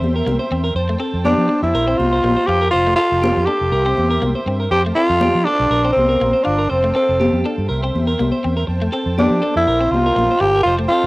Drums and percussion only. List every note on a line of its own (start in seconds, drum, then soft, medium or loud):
0.04 muted conga soft
0.04 high conga medium
0.27 high conga medium
0.76 muted conga soft
1.25 high conga loud
1.51 muted conga soft
1.77 muted conga soft
2.00 muted conga soft
2.00 high conga medium
2.24 high conga medium
2.74 muted conga soft
3.24 high conga loud
3.49 muted conga soft
3.73 muted conga soft
3.97 muted conga soft
3.97 high conga medium
4.23 high conga medium
4.72 muted conga soft
5.21 high conga loud
5.46 muted conga soft
5.71 muted conga soft
5.98 muted conga soft
5.98 high conga medium
6.21 high conga medium
6.72 muted conga soft
7.21 high conga loud
7.46 muted conga soft
7.72 muted conga soft
7.96 muted conga soft
7.96 high conga medium
8.20 high conga medium
8.70 muted conga soft
9.19 high conga loud
9.44 muted conga soft
9.68 muted conga soft
9.94 muted conga soft
9.94 high conga medium
10.19 high conga medium
10.67 muted conga soft